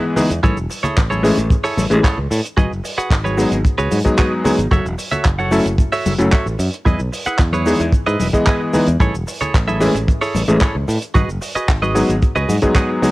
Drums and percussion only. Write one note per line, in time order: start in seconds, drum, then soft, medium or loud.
0.16 open hi-hat loud
0.16 low conga medium
0.16 cabasa medium
0.16 shaker medium
0.30 closed hi-hat medium
0.30 cabasa soft
0.30 shaker medium
0.43 kick loud
0.43 closed hi-hat medium
0.43 high conga loud
0.43 cabasa medium
0.43 shaker soft
0.57 cabasa soft
0.70 open hi-hat loud
0.70 cabasa medium
0.70 shaker loud
0.84 closed hi-hat medium
0.84 low conga medium
0.84 cabasa soft
0.84 shaker medium
0.97 kick loud
0.97 clap loud
0.97 closed hi-hat medium
0.97 cabasa medium
0.97 shaker soft
1.11 high conga medium
1.11 cabasa soft
1.24 open hi-hat loud
1.24 cabasa medium
1.24 shaker medium
1.37 closed hi-hat medium
1.37 cabasa medium
1.37 shaker medium
1.50 kick loud
1.50 closed hi-hat medium
1.50 cabasa medium
1.50 shaker soft
1.64 open hi-hat medium
1.64 cabasa soft
1.78 open hi-hat loud
1.78 high conga medium
1.78 cabasa medium
1.78 shaker medium
1.91 closed hi-hat medium
1.91 cabasa medium
1.91 shaker medium
2.04 kick loud
2.04 clap loud
2.04 closed hi-hat medium
2.04 cabasa medium
2.04 shaker soft
2.31 open hi-hat loud
2.31 cabasa medium
2.31 shaker medium
2.44 closed hi-hat medium
2.44 cabasa medium
2.44 shaker soft
2.58 kick loud
2.58 closed hi-hat medium
2.58 high conga loud
2.58 cabasa medium
2.58 shaker soft
2.73 cabasa soft
2.85 open hi-hat loud
2.85 cabasa medium
2.85 shaker medium
2.99 closed hi-hat medium
2.99 cabasa medium
2.99 shaker soft
3.11 kick loud
3.11 clap loud
3.11 closed hi-hat medium
3.11 cabasa medium
3.11 shaker soft
3.26 high conga medium
3.26 cabasa soft
3.38 open hi-hat loud
3.38 cabasa medium
3.38 shaker medium
3.52 closed hi-hat medium
3.52 cabasa soft
3.52 shaker medium
3.65 kick loud
3.65 closed hi-hat medium
3.65 cabasa medium
3.65 shaker soft
3.79 cabasa medium
3.91 open hi-hat loud
3.91 high conga medium
3.91 cabasa medium
3.91 shaker medium
4.05 kick medium
4.05 closed hi-hat medium
4.05 cabasa medium
4.05 shaker medium
4.17 kick loud
4.17 clap loud
4.17 closed hi-hat medium
4.17 cabasa medium
4.17 shaker soft
4.45 open hi-hat loud
4.45 low conga medium
4.45 cabasa medium
4.45 shaker medium
4.58 closed hi-hat medium
4.58 cabasa medium
4.58 shaker medium
4.71 kick loud
4.71 closed hi-hat medium
4.71 high conga medium
4.71 cabasa medium
4.71 shaker soft
4.86 cabasa medium
4.98 open hi-hat loud
4.98 cabasa medium
4.98 shaker medium
5.12 closed hi-hat medium
5.12 low conga medium
5.12 cabasa soft
5.12 shaker soft
5.25 kick loud
5.25 clap loud
5.25 closed hi-hat medium
5.25 cabasa medium
5.25 shaker soft
5.39 high conga medium
5.39 cabasa soft
5.51 open hi-hat loud
5.51 cabasa medium
5.51 shaker medium
5.65 closed hi-hat medium
5.65 cabasa medium
5.65 shaker soft
5.78 kick loud
5.78 closed hi-hat medium
5.78 cabasa medium
5.78 shaker soft
5.93 open hi-hat medium
5.93 cabasa medium
6.06 open hi-hat loud
6.06 high conga loud
6.06 cabasa medium
6.06 shaker medium
6.19 closed hi-hat medium
6.19 cabasa soft
6.19 shaker medium
6.32 kick loud
6.32 clap loud
6.32 closed hi-hat medium
6.32 cabasa medium
6.32 shaker soft
6.47 cabasa soft
6.59 open hi-hat loud
6.59 cabasa medium
6.59 shaker medium
6.73 closed hi-hat medium
6.73 cabasa medium
6.73 shaker soft
6.86 kick loud
6.86 closed hi-hat medium
6.86 high conga medium
6.86 cabasa medium
6.86 shaker soft
6.99 cabasa soft
7.13 open hi-hat loud
7.13 cabasa medium
7.13 shaker medium
7.26 closed hi-hat medium
7.26 cabasa soft
7.26 shaker soft
7.39 kick loud
7.39 clap loud
7.39 closed hi-hat medium
7.39 cabasa medium
7.39 shaker soft
7.53 high conga medium
7.53 cabasa medium
7.66 open hi-hat loud
7.66 cabasa medium
7.66 shaker medium
7.80 closed hi-hat medium
7.80 cabasa soft
7.80 shaker medium
7.92 kick loud
7.92 closed hi-hat medium
7.92 cabasa medium
7.92 shaker soft
8.08 cabasa medium
8.20 open hi-hat loud
8.20 high conga medium
8.20 cabasa medium
8.20 shaker medium
8.33 kick medium
8.33 closed hi-hat medium
8.33 cabasa medium
8.33 shaker medium
8.45 kick loud
8.45 clap loud
8.45 closed hi-hat medium
8.45 cabasa medium
8.45 shaker soft
8.73 open hi-hat loud
8.73 low conga medium
8.73 cabasa medium
8.73 shaker medium
8.87 closed hi-hat medium
8.87 cabasa medium
8.87 shaker medium
9.00 kick loud
9.00 closed hi-hat medium
9.00 high conga medium
9.00 cabasa medium
9.00 shaker soft
9.15 cabasa medium
9.27 open hi-hat loud
9.27 cabasa loud
9.27 shaker loud
9.41 closed hi-hat medium
9.41 low conga medium
9.41 cabasa soft
9.41 shaker medium
9.54 kick loud
9.54 clap loud
9.54 closed hi-hat medium
9.54 cabasa medium
9.54 shaker soft
9.68 high conga medium
9.68 cabasa soft
9.81 open hi-hat loud
9.81 cabasa medium
9.81 shaker medium
9.94 closed hi-hat medium
9.94 cabasa medium
9.94 shaker soft
10.08 kick loud
10.08 closed hi-hat medium
10.08 cabasa medium
10.08 shaker soft
10.22 open hi-hat medium
10.22 cabasa soft
10.34 open hi-hat loud
10.34 high conga medium
10.34 cabasa medium
10.34 shaker loud
10.48 closed hi-hat medium
10.48 cabasa medium
10.48 shaker soft
10.61 kick loud
10.61 clap loud
10.61 closed hi-hat medium
10.61 cabasa medium
10.61 shaker soft
10.88 open hi-hat loud
10.88 cabasa medium
10.88 shaker medium
11.02 closed hi-hat medium
11.02 cabasa soft
11.02 shaker soft
11.15 kick loud
11.15 closed hi-hat medium
11.15 high conga medium
11.15 cabasa medium
11.15 shaker soft
11.30 cabasa medium
11.42 open hi-hat loud
11.42 cabasa medium
11.42 shaker medium
11.56 closed hi-hat medium
11.56 cabasa medium
11.56 shaker medium
11.69 kick loud
11.69 clap loud
11.69 closed hi-hat medium
11.69 cabasa medium
11.69 shaker soft
11.83 high conga medium
11.83 cabasa soft
11.95 open hi-hat loud
11.95 cabasa medium
11.95 shaker medium
12.10 closed hi-hat medium
12.10 cabasa medium
12.10 shaker medium
12.22 kick loud
12.22 closed hi-hat medium
12.22 cabasa medium
12.22 shaker soft
12.36 cabasa soft
12.49 open hi-hat loud
12.49 high conga medium
12.49 cabasa loud
12.49 shaker loud
12.62 kick medium
12.62 closed hi-hat medium
12.62 cabasa medium
12.62 shaker medium
12.75 kick loud
12.75 clap loud
12.75 closed hi-hat medium
12.75 cabasa medium
12.75 shaker soft
13.03 open hi-hat loud
13.03 low conga medium
13.03 cabasa medium
13.03 shaker medium